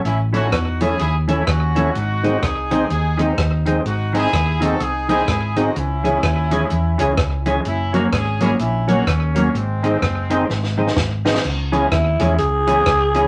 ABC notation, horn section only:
X:1
M:4/4
L:1/8
Q:"Swing" 1/4=126
K:C#m
V:1 name="Horn section"
[CE] [DF]2 [EG] [EG] [CE] [CF]2 | [DF]2 [DG]2 [DG] [^B,D]2 z | [DF] [EG]2 [FA] [DG] [EG]2 [DF] | [CE]6- [CE] z |
[CE] [DF] [CG] [EG] [CE] [DF] [^A,C]2 | [G,^B,]6 z2 | z8 |]